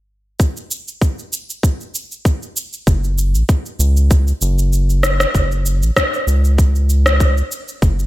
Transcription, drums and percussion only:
0.40 kick medium
0.40 shaker soft
0.57 shaker soft
0.71 shaker medium
0.88 shaker soft
1.02 kick medium
1.02 shaker soft
1.19 shaker soft
1.33 shaker medium
1.50 shaker soft
1.63 kick medium
1.63 shaker soft
1.81 shaker soft
1.95 shaker medium
2.12 shaker soft
2.25 kick loud
2.25 shaker soft
2.42 shaker soft
2.57 shaker medium
2.73 shaker soft
2.87 kick loud
2.87 shaker soft
3.04 shaker soft
3.18 shaker medium
3.35 shaker soft
3.49 kick loud
3.49 shaker soft
3.66 shaker soft
3.80 shaker medium
3.97 shaker soft
4.11 kick medium
4.11 shaker soft
4.27 shaker soft
4.42 shaker medium
4.58 shaker soft
4.73 shaker soft
4.90 shaker soft
5.03 cross-stick medium
5.03 shaker medium
5.20 cross-stick medium
5.20 shaker soft
5.35 kick medium
5.35 shaker soft
5.52 shaker soft
5.66 shaker medium
5.83 shaker soft
5.97 kick loud
5.97 cross-stick medium
5.97 shaker soft
6.14 shaker soft
6.28 shaker medium
6.45 shaker soft
6.58 kick medium
6.58 shaker soft
6.75 shaker soft
6.90 shaker medium
7.06 cross-stick medium
7.06 shaker soft
7.20 kick loud
7.20 shaker soft
7.37 shaker soft
7.52 shaker medium
7.68 shaker soft
7.82 kick loud
7.82 shaker soft
7.99 shaker soft

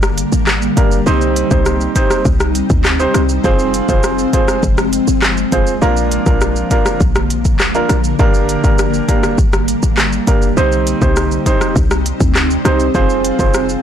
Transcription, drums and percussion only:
0.03 cross-stick loud
0.03 shaker medium
0.18 closed hi-hat medium
0.18 shaker medium
0.32 shaker medium
0.47 cross-stick loud
0.47 clap medium
0.47 shaker medium
0.62 shaker soft
0.77 kick loud
0.77 closed hi-hat medium
0.77 shaker medium
0.91 shaker medium
1.07 shaker medium
1.21 shaker medium
1.36 closed hi-hat medium
1.36 shaker medium
1.51 kick medium
1.51 shaker medium
1.66 cross-stick medium
1.66 shaker medium
1.81 shaker soft
1.96 kick medium
1.96 closed hi-hat medium
1.96 shaker medium
2.10 cross-stick loud
2.10 shaker medium
2.25 kick medium
2.25 shaker medium
2.40 cross-stick medium
2.40 shaker medium
2.55 closed hi-hat medium
2.55 shaker medium
2.70 kick loud
2.70 shaker medium
2.85 cross-stick medium
2.85 clap medium
2.85 shaker medium
3.00 shaker soft
3.14 cross-stick medium
3.14 closed hi-hat medium
3.14 shaker medium
3.29 shaker medium
3.44 kick loud
3.44 shaker medium
3.59 shaker medium
3.74 closed hi-hat medium
3.74 shaker medium
3.89 kick loud
3.89 shaker medium
4.03 cross-stick medium
4.03 shaker medium
4.18 shaker soft
4.33 kick medium
4.33 closed hi-hat medium
4.33 shaker medium
4.48 cross-stick medium
4.48 shaker medium
4.63 kick medium
4.63 shaker medium
4.78 cross-stick loud
4.78 shaker medium
4.93 closed hi-hat medium
4.93 shaker medium
5.07 shaker medium
5.22 cross-stick medium
5.22 clap medium
5.22 shaker medium
5.37 shaker soft
5.52 kick loud
5.52 closed hi-hat medium
5.52 shaker medium
5.67 shaker medium
5.82 shaker medium
5.97 shaker medium
6.12 closed hi-hat medium
6.12 shaker medium
6.26 kick loud
6.26 shaker medium
6.41 cross-stick medium
6.41 shaker medium
6.56 shaker soft
6.71 kick medium
6.71 closed hi-hat medium
6.71 shaker medium
6.86 cross-stick loud
6.86 shaker medium
7.00 kick medium
7.00 shaker medium
7.15 cross-stick loud
7.15 shaker medium
7.30 closed hi-hat medium
7.30 shaker medium
7.45 kick medium
7.45 shaker medium
7.60 cross-stick medium
7.60 clap medium
7.60 shaker medium
7.75 shaker soft
7.89 cross-stick medium
7.89 closed hi-hat medium
7.89 shaker medium
8.04 shaker medium
8.19 kick loud
8.19 shaker medium
8.34 shaker medium
8.49 closed hi-hat medium
8.49 shaker medium
8.64 kick medium
8.64 shaker medium
8.79 cross-stick medium
8.79 shaker medium
8.94 shaker soft
9.09 kick medium
9.09 closed hi-hat medium
9.09 shaker medium
9.23 cross-stick loud
9.23 shaker medium
9.38 kick medium
9.38 shaker medium
9.53 cross-stick loud
9.53 shaker medium
9.68 closed hi-hat medium
9.68 shaker medium
9.83 shaker medium
9.97 cross-stick medium
9.97 clap medium
9.97 shaker medium
10.13 shaker soft
10.27 kick loud
10.27 closed hi-hat medium
10.27 shaker medium
10.42 shaker medium
10.57 shaker medium
10.72 shaker medium
10.87 closed hi-hat medium
10.87 shaker medium
11.02 kick medium
11.02 shaker medium
11.16 cross-stick medium
11.16 shaker medium
11.31 shaker soft
11.46 kick medium
11.46 closed hi-hat medium
11.46 shaker medium
11.61 cross-stick medium
11.61 shaker medium
11.76 kick medium
11.76 shaker medium
11.91 cross-stick loud
11.91 shaker medium
12.06 closed hi-hat medium
12.06 shaker medium
12.21 kick medium
12.21 shaker medium
12.35 cross-stick medium
12.35 clap medium
12.35 shaker medium
12.50 shaker soft
12.65 cross-stick medium
12.65 closed hi-hat medium
12.65 shaker medium
12.80 shaker medium
12.95 kick loud
12.95 shaker medium
13.10 shaker medium
13.25 closed hi-hat medium
13.25 shaker medium
13.39 kick loud
13.39 shaker medium
13.54 cross-stick medium
13.54 shaker medium
13.69 shaker soft

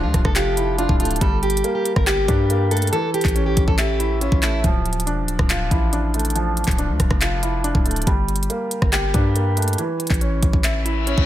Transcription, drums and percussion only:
0.14 kick loud
0.14 cross-stick medium
0.14 closed hi-hat medium
0.25 kick medium
0.25 cross-stick medium
0.36 clap loud
0.36 closed hi-hat medium
0.57 closed hi-hat medium
0.79 closed hi-hat medium
0.89 kick loud
1.00 closed hi-hat medium
1.05 closed hi-hat medium
1.11 closed hi-hat medium
1.16 closed hi-hat medium
1.21 kick loud
1.21 closed hi-hat medium
1.43 closed hi-hat soft
1.43 open hi-hat medium
1.50 closed hi-hat medium
1.57 closed hi-hat medium
1.64 closed hi-hat medium
1.85 closed hi-hat medium
1.96 kick medium
1.96 cross-stick medium
2.07 clap loud
2.07 closed hi-hat medium
2.28 kick medium
2.28 closed hi-hat medium
2.50 closed hi-hat medium
2.71 closed hi-hat medium
2.77 closed hi-hat medium
2.82 closed hi-hat medium
2.87 closed hi-hat medium
2.93 closed hi-hat medium
3.14 closed hi-hat medium
3.21 kick medium
3.21 clap medium
3.21 closed hi-hat medium
3.28 closed hi-hat medium
3.36 closed hi-hat medium
3.57 kick loud
3.57 closed hi-hat medium
3.68 kick medium
3.78 clap loud
3.78 closed hi-hat medium
4.00 closed hi-hat medium
4.21 closed hi-hat medium
4.32 kick loud
4.43 clap loud
4.43 closed hi-hat medium
4.64 kick loud
4.64 closed hi-hat medium
4.86 closed hi-hat soft
4.86 open hi-hat medium
4.93 closed hi-hat medium
5.00 closed hi-hat medium
5.07 closed hi-hat medium
5.28 closed hi-hat medium
5.39 kick medium
5.39 cross-stick medium
5.50 clap loud
5.50 closed hi-hat medium
5.71 kick medium
5.71 closed hi-hat medium
5.93 closed hi-hat medium
6.14 closed hi-hat medium
6.19 closed hi-hat medium
6.25 closed hi-hat medium
6.30 closed hi-hat medium
6.36 closed hi-hat medium
6.57 closed hi-hat soft
6.57 open hi-hat medium
6.64 kick medium
6.64 clap medium
6.64 closed hi-hat medium
6.71 closed hi-hat medium
6.79 closed hi-hat medium
7.00 kick loud
7.00 cross-stick medium
7.00 closed hi-hat medium
7.11 kick medium
7.11 cross-stick medium
7.21 clap loud
7.21 closed hi-hat medium
7.43 closed hi-hat medium
7.64 closed hi-hat medium
7.75 kick loud
7.86 closed hi-hat medium
7.91 closed hi-hat medium
7.96 closed hi-hat medium
8.02 closed hi-hat medium
8.07 kick loud
8.07 closed hi-hat medium
8.28 closed hi-hat medium
8.28 open hi-hat medium
8.36 closed hi-hat medium
8.43 closed hi-hat medium
8.50 closed hi-hat medium
8.71 closed hi-hat medium
8.82 kick medium
8.82 cross-stick medium
8.93 clap loud
8.93 closed hi-hat medium
9.14 kick medium
9.14 closed hi-hat medium
9.36 closed hi-hat medium
9.57 closed hi-hat medium
9.62 closed hi-hat medium
9.68 closed hi-hat medium
9.73 closed hi-hat medium
9.78 closed hi-hat medium
10.00 closed hi-hat medium
10.07 kick medium
10.07 clap medium
10.07 closed hi-hat medium
10.14 closed hi-hat medium
10.21 closed hi-hat medium
10.43 kick loud
10.43 closed hi-hat medium
10.53 kick medium
10.64 clap loud
10.64 closed hi-hat medium
10.86 closed hi-hat medium
11.07 closed hi-hat medium
11.18 kick medium

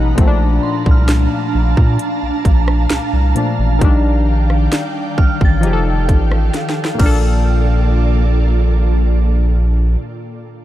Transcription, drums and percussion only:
0.18 kick loud
0.18 closed hi-hat medium
0.86 kick medium
1.09 snare loud
1.09 closed hi-hat medium
1.77 kick medium
1.99 closed hi-hat medium
2.45 kick medium
2.45 closed hi-hat medium
2.68 cross-stick loud
2.90 snare loud
2.90 closed hi-hat medium
3.36 closed hi-hat medium
3.81 kick loud
3.81 closed hi-hat medium
4.50 cross-stick medium
4.72 snare loud
4.72 closed hi-hat medium
5.18 kick medium
5.41 kick medium
5.63 closed hi-hat medium
6.09 kick medium
6.09 closed hi-hat medium
6.32 cross-stick medium
6.54 snare medium
6.54 closed hi-hat medium
6.69 snare medium
6.85 snare medium
7.00 kick loud
7.00 crash medium

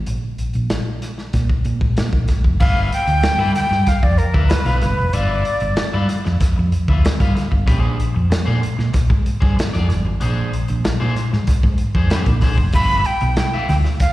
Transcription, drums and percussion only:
0.06 closed hi-hat medium
0.38 closed hi-hat medium
0.53 closed hi-hat soft
0.70 snare loud
0.70 closed hi-hat medium
1.02 snare soft
1.02 closed hi-hat medium
1.18 snare soft
1.33 kick medium
1.33 snare soft
1.33 closed hi-hat medium
1.50 kick medium
1.65 closed hi-hat medium
1.81 kick medium
1.97 snare medium
1.97 closed hi-hat medium
2.13 kick loud
2.28 kick medium
2.28 snare soft
2.28 closed hi-hat medium
2.44 kick medium
2.60 kick loud
2.60 crash loud
2.92 closed hi-hat medium
3.07 closed hi-hat medium
3.23 snare loud
3.23 closed hi-hat medium
3.56 snare soft
3.56 closed hi-hat medium
3.72 snare soft
3.86 kick medium
3.86 snare soft
3.86 closed hi-hat loud
4.03 kick medium
4.18 closed hi-hat medium
4.34 kick loud
4.50 snare loud
4.50 closed hi-hat loud
4.66 closed hi-hat medium
4.81 snare soft
4.81 closed hi-hat medium
5.13 closed hi-hat medium
5.45 closed hi-hat medium
5.60 closed hi-hat medium
5.76 snare loud
5.76 closed hi-hat medium
6.09 snare soft
6.09 closed hi-hat medium
6.25 snare soft
6.40 kick loud
6.40 snare soft
6.40 closed hi-hat loud
6.72 closed hi-hat medium
6.88 kick loud
7.05 snare loud
7.05 closed hi-hat medium
7.20 kick loud
7.20 closed hi-hat medium
7.37 snare soft
7.37 closed hi-hat medium
7.52 kick medium
7.68 kick loud
7.68 closed hi-hat medium
8.00 closed hi-hat medium
8.32 snare loud
8.32 closed hi-hat medium
8.63 closed hi-hat medium
8.79 snare soft
8.94 kick medium
8.94 snare soft
8.94 closed hi-hat loud
9.10 kick medium
9.26 closed hi-hat medium
9.42 kick loud
9.59 snare loud
9.59 closed hi-hat medium
9.74 closed hi-hat medium
9.90 snare soft
9.90 closed hi-hat medium
10.21 closed hi-hat medium
10.53 closed hi-hat medium
10.68 closed hi-hat medium
10.85 snare loud
10.85 closed hi-hat medium
11.16 snare soft
11.16 closed hi-hat medium
11.33 snare soft
11.47 kick medium
11.47 snare soft
11.47 closed hi-hat loud
11.63 kick medium
11.78 closed hi-hat medium
11.95 kick loud
12.10 snare loud
12.10 closed hi-hat medium
12.26 kick loud
12.26 closed hi-hat medium
12.41 kick medium
12.41 snare soft
12.41 open hi-hat medium
12.58 kick medium
12.73 kick loud
12.73 closed hi-hat medium
13.05 closed hi-hat medium
13.21 closed hi-hat medium
13.36 snare loud
13.36 closed hi-hat medium
13.69 snare soft
13.69 open hi-hat medium
13.85 snare soft
14.00 kick medium
14.00 snare soft
14.00 closed hi-hat loud

